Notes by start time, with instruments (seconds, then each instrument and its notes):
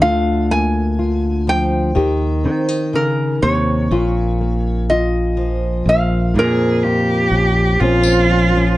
0.01 fingered electric bass D2, nylon-string guitar D3 F4, resonator guitar played with a steel bar F5
0.51 nylon-string guitar A#3, resonator guitar played with a steel bar G#5
0.99 nylon-string guitar F4
1.47 nylon-string guitar F3, resonator guitar played with a steel bar G5
1.95 fingered electric bass D#2, nylon-string guitar D#3 G4
2.44 fingered electric bass D#3, nylon-string guitar C4
2.69 nylon-string guitar D#4
2.93 nylon-string guitar C#3, resonator guitar played with a steel bar A#4
3.42 fingered electric bass D#2, nylon-string guitar C3, resonator guitar played with a steel bar C#5
3.91 fingered electric bass A#1, nylon-string guitar A#2 F4
4.41 nylon-string guitar A#3
4.90 nylon-string guitar F4, resonator guitar played with a steel bar D#5
5.37 nylon-string guitar F3
5.86 fingered electric bass A#1, nylon-string guitar A#3, resonator guitar played with a steel bar F5
6.34 nylon-string guitar F2, fingered electric bass A#2, cello G#4
6.39 resonator guitar played with a steel bar A#4
6.84 nylon-string guitar F4, cello G4
7.31 fingered electric bass A#1, nylon-string guitar C#4
7.80 fingered electric bass A#1, nylon-string guitar A#2 F3 C4 C#4, cello F4
8.03 nylon-string guitar C#4, tambourine
8.31 nylon-string guitar C#4
8.55 nylon-string guitar F3 C#4